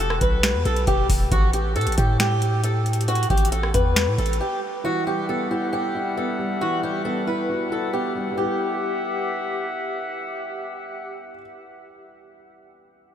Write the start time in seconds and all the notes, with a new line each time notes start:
Already playing: E1
0.00 A4
0.10 cross-stick
0.21 B1 B4, kick, closed hi-hat
0.43 finger snap, snare, closed hi-hat
0.54 E2
0.65 B1 A4, closed hi-hat
0.76 closed hi-hat
0.87 E1 G4, kick, closed hi-hat
1.10 E1, kick, open hi-hat
1.32 A1 F#4, kick, closed hi-hat
1.53 G4, closed hi-hat
1.76 A2 A4, closed hi-hat
1.81 closed hi-hat
1.87 A1, closed hi-hat
1.92 closed hi-hat
1.98 A2 G4, kick, closed hi-hat
2.20 G4, finger snap, snare, closed hi-hat
2.42 closed hi-hat
2.64 A4, closed hi-hat
2.86 closed hi-hat
2.93 closed hi-hat
3.01 closed hi-hat
3.08 F#4, closed hi-hat
3.15 closed hi-hat
3.23 closed hi-hat
3.30 A1 G4, kick, closed hi-hat
3.38 closed hi-hat
3.45 closed hi-hat
3.52 A4, closed hi-hat
3.63 cross-stick
3.74 E2 B4, kick, closed hi-hat
3.96 finger snap, snare, closed hi-hat
4.07 A2
4.18 A1 A4, closed hi-hat
4.26 closed hi-hat
4.33 closed hi-hat
4.41 G4
4.84 E3 G3 F#4 E5 F#5
5.07 G3 G4
5.29 B3 A4
5.51 E4 G4
5.73 G4
5.95 E4
6.17 B3 A4
6.39 G3
6.61 E3 F#4
6.83 G3 G4
7.05 B3 A4
7.27 E4 B4
7.50 F#4
7.71 E4 A4
7.93 B3 G4
8.15 G3
8.31 G3
8.36 B3 E4 G4 E5 F#5
8.44 G4